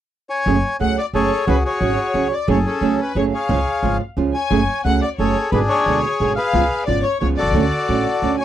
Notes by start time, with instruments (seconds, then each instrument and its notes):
0.29 bandoneon C#5 G#5
0.46 upright bass F#1, nylon-string guitar C#3 F#3 A3 C#4 G#4
0.79 upright bass C#2, nylon-string guitar C#3 F#3 A3 C#4 G#4, bandoneon F#5, violin section F#5
0.98 bandoneon D5, violin section D5
1.13 upright bass F#1, nylon-string guitar C#3 F#3 A3 C#4 G#4, bandoneon G#4 A4 C#5, violin section C#5
1.47 upright bass C#2, nylon-string guitar C#3 F#3 C#4 F#4 G#4, bandoneon F#4 G#4 B4, violin section B4
1.65 bandoneon F#4 G#4 C#5, violin section C#5
1.80 upright bass G#1, nylon-string guitar C#3 F#3 C#4 F#4 G#4
2.14 upright bass C#2, nylon-string guitar C#3 F#3 C#4 F#4 G#4
2.33 violin section D5, bandoneon D5
2.47 upright bass F#1, nylon-string guitar C#3 F#3 A3 C#4 G#4, bandoneon G#4 A4 C#5, violin section C#5
2.66 bandoneon C#4 A4, violin section A4
2.81 upright bass C#2, nylon-string guitar C#3 F#3 A3 C#4 G#4
3.00 violin section B4, bandoneon B4
3.15 upright bass F#1, nylon-string guitar C#3 F#3 A3 C#4 G#4, violin section C#5, bandoneon C#5
3.33 bandoneon G#4 C#5 F5, violin section F5
3.49 upright bass C#2, nylon-string guitar C#3 F3 G#3 C#4 F4
3.83 upright bass G#1, nylon-string guitar C#3 F3 G#3 C#4 F4
4.17 upright bass C#2, nylon-string guitar C#3 F3 G#3 C#4 F4
4.34 bandoneon C#5 G#5, violin section G#5
4.50 upright bass F#1, nylon-string guitar C#3 F#3 A3 C#4 G#4
4.85 upright bass C#2, nylon-string guitar C#3 F#3 A3 C#4 G#4, bandoneon F#5, violin section F#5
5.02 bandoneon D5, violin section D5
5.18 upright bass F#1, nylon-string guitar C#3 F#3 A3 C#4 G#4, bandoneon G#4 A4 C#5, violin section C#5
5.51 upright bass G#1, nylon-string guitar B2 D3 G#3 B3 G#4, bandoneon D4 G#4 B4, violin section B4
5.69 bandoneon G#4 C#5, violin section C#5
5.86 upright bass D2, nylon-string guitar B2 D3 G#3 B3 G#4
6.20 upright bass G#1, nylon-string guitar B2 D3 G#3 B3 G#4
6.36 bandoneon G#4 B4 F5, violin section F5
6.53 upright bass C#2, nylon-string guitar C#3 F3 G#3 B3 F4
6.85 upright bass G#1, nylon-string guitar C#3 F3 G#3 B3 F4, violin section D5, bandoneon D5
7.03 violin section C#5, bandoneon C#5
7.20 upright bass C#2, nylon-string guitar C#3 F3 G#3 B3 F4, bandoneon C#5, violin section C#5
7.37 bandoneon F#4 A4 D5, violin section D5
7.42 upright bass B1
7.47 upright bass C2
7.51 upright bass C#2 D2, nylon-string guitar D3 A3
7.55 nylon-string guitar C#4 F#4
7.88 upright bass A1, nylon-string guitar D3 A3 C#4 F#4
8.22 upright bass D2, nylon-string guitar D3 A3 C#4 F#4
8.38 bandoneon C#5 G#5, violin section G#5